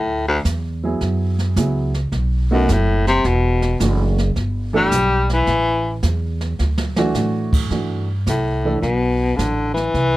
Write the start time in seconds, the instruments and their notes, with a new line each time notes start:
Already playing: upright bass D2, baritone saxophone A2
0.28 baritone saxophone D2
0.45 upright bass E2, kick, snare, hi-hat pedal
0.84 grand piano F#3 B3 E4 G#4
1.01 upright bass F#2, brush sweep, kick, snare
1.39 snare
1.56 upright bass C#2, grand piano F#3 B3 E4 G#4, kick, snare, hi-hat pedal
1.94 snare
2.12 upright bass B1, brush sweep, kick, snare
2.51 baritone saxophone F#2, grand piano A3 B3 D#4 F#4
2.68 upright bass F#1, kick, snare, hi-hat pedal
2.73 baritone saxophone A2
3.07 baritone saxophone C3, snare
3.24 upright bass E1, baritone saxophone B2, brush sweep, kick, snare
3.62 snare
3.80 upright bass F#1, grand piano E3 A3 D4 F#4, kick, snare, hi-hat pedal
4.18 snare
4.35 upright bass G1, brush sweep, kick, snare
4.73 grand piano E3 A3 D4 A4, baritone saxophone G3
4.91 upright bass B1, kick, snare, hi-hat pedal
5.29 baritone saxophone E3, snare
5.47 upright bass A1, brush sweep, kick, snare
6.03 upright bass E2, kick, snare, hi-hat pedal
6.41 snare
6.59 upright bass D2, snare
6.78 snare
6.96 grand piano E3 A3 D4 F#4, snare
7.14 upright bass A2, snare, hi-hat pedal
7.53 kick, crash
7.71 upright bass G2, grand piano E3 A3 D4 F#4, brush sweep, kick, snare
8.26 upright bass C2, baritone saxophone A2, kick, snare, hi-hat pedal
8.65 grand piano E3 A3 D4 A4
8.82 upright bass B1, baritone saxophone B2, brush sweep, kick, snare
9.36 upright bass A1, baritone saxophone D3, kick, snare, hi-hat pedal
9.74 baritone saxophone E3, snare
9.94 upright bass C2, brush sweep, kick, snare